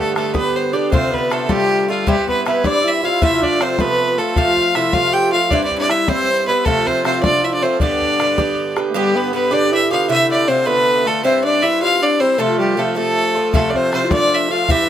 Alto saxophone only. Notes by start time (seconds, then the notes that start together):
Already playing: A3
0.17 A3
0.35 B3
0.73 D4
0.91 C4
1.11 B3
1.49 G3
2.07 G3
2.27 B3
2.46 B3
2.64 D4
2.84 E4
3.03 F4
3.21 E4
3.42 D4
3.60 C4
3.78 B3
4.18 A3
4.36 F4
4.76 E4
4.93 F4
5.13 G4
5.32 F4
5.51 D4
5.78 D4
5.90 E4
6.08 C4
6.46 B3
6.66 A3
6.86 C4
7.05 C4
7.23 D4
7.44 E4
7.53 D4
7.62 C4
7.80 D4
8.90 A3
8.94 G3
9.16 B3
9.34 B3
9.52 D4
9.72 E4
9.91 F4
10.02 F4
10.08 E4
10.48 C4
10.66 B3
11.06 A3
11.24 C4
11.44 D4
11.63 E4
11.82 F4
12.02 D4
12.20 C4
12.38 A3
12.59 G3
12.76 A3
12.96 A3
13.54 A3
13.74 C4
13.93 C4
14.04 E4
14.11 D4
14.50 F4
14.68 E4